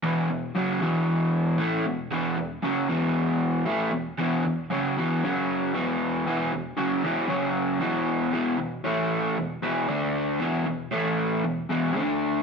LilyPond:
\new Staff \with { instrumentName = "Overdriven electric guitar" } { \clef bass \time 4/4 \key a \major \tempo 4 = 116 <e, b, e>8 <e, b,>8 <fis, cis fis>8 <e, b, e>4. <a, e a>8 <e, b,>8 | <e, b, e>8 <e, b,>8 <fis, cis fis>8 <e, b, e>4. <a, e a>8 <e, b,>8 | <e, b, e>8 <e, b,>8 <fis, cis fis>8 <e, b, e>8 <fis, cis fis>4 <e, b, e>4 | <e, b, e>8 <e, b,>8 <fis, cis fis>8 <e, b, e>8 <fis, cis fis>4 <e, b, e>4 |
<e, b, e>8 <e, b,>8 <a, e a>4 <e, b,>8 <e, b, e>8 <d a d'>4 | <e, b, e>8 <e, b,>8 <a, e a>4 <e, b,>8 <e, b, e>8 <d a d'>4 | }